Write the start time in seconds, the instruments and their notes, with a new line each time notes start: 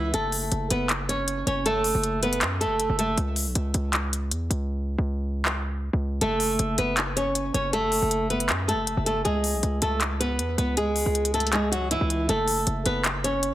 Already playing: 808-style bass C#2, nylon-string guitar E3 E4
0.14 808-style bass F#1, nylon-string guitar A3 A4, closed hi-hat
0.32 open hi-hat
0.52 808-style bass F#1, closed hi-hat
0.70 808-style bass F#1, nylon-string guitar B3 B4, closed hi-hat
0.89 clap, closed hi-hat
1.09 nylon-string guitar C#4 C#5, closed hi-hat
1.28 closed hi-hat
1.47 808-style bass F#1, nylon-string guitar C#4 C#5, closed hi-hat
1.66 nylon-string guitar A3 A4, closed hi-hat
1.84 open hi-hat
1.95 808-style bass F#1
2.04 closed hi-hat
2.23 nylon-string guitar B3 B4, closed hi-hat
2.33 closed hi-hat
2.41 808-style bass F#2, clap, closed hi-hat
2.61 nylon-string guitar A3 A4, closed hi-hat
2.66 808-style bass F#1
2.80 closed hi-hat
2.90 808-style bass F#1
2.99 nylon-string guitar A3 A4, closed hi-hat
3.18 808-style bass C#2, closed hi-hat
3.36 open hi-hat
3.47 808-style bass B1
3.55 808-style bass C#2, closed hi-hat
3.74 808-style bass C#2, closed hi-hat
3.93 clap, closed hi-hat
4.13 closed hi-hat
4.31 808-style bass E2, closed hi-hat
4.50 808-style bass C#2, closed hi-hat
4.98 808-style bass C#2
5.45 clap
5.93 808-style bass C#2
6.21 808-style bass F#1, nylon-string guitar A3 A4, closed hi-hat
6.40 open hi-hat
6.59 808-style bass F#1, closed hi-hat
6.78 808-style bass F#1, nylon-string guitar B3 B4, closed hi-hat
6.97 clap, closed hi-hat
7.16 nylon-string guitar C#4 C#5, closed hi-hat
7.35 closed hi-hat
7.54 808-style bass F#1, nylon-string guitar C#4 C#5, closed hi-hat
7.73 nylon-string guitar A3 A4, closed hi-hat
7.92 open hi-hat
8.02 808-style bass F#1
8.11 closed hi-hat
8.30 nylon-string guitar B3 B4, closed hi-hat
8.40 closed hi-hat
8.49 808-style bass F#2, clap, closed hi-hat
8.68 nylon-string guitar A3 A4, closed hi-hat
8.73 808-style bass F#1
8.87 closed hi-hat
8.97 808-style bass F#1
9.06 nylon-string guitar A3 A4, closed hi-hat
9.25 808-style bass C#2, nylon-string guitar G#3 G#4, closed hi-hat
9.44 open hi-hat
9.54 808-style bass B1
9.63 808-style bass C#2, closed hi-hat
9.82 808-style bass C#2, nylon-string guitar A3 A4, closed hi-hat
10.01 clap, closed hi-hat
10.20 nylon-string guitar B3 B4, closed hi-hat
10.39 808-style bass E2, closed hi-hat
10.58 808-style bass C#2, nylon-string guitar B3 B4, closed hi-hat
10.77 nylon-string guitar G#3 G#4, closed hi-hat
10.96 open hi-hat
11.06 808-style bass C#2
11.15 closed hi-hat
11.25 closed hi-hat
11.34 nylon-string guitar A3 A4, closed hi-hat
11.40 closed hi-hat
11.47 closed hi-hat
11.52 nylon-string guitar G#3 G#4, clap, closed hi-hat
11.72 nylon-string guitar F#3 F#4, closed hi-hat
11.91 nylon-string guitar E3 E4, closed hi-hat
12.01 808-style bass C#2
12.10 closed hi-hat
12.29 808-style bass F#1, nylon-string guitar A3 A4, closed hi-hat
12.48 open hi-hat
12.67 808-style bass F#1, closed hi-hat
12.86 808-style bass F#1, nylon-string guitar B3 B4, closed hi-hat
13.04 clap, closed hi-hat
13.24 nylon-string guitar C#4 C#5, closed hi-hat
13.43 closed hi-hat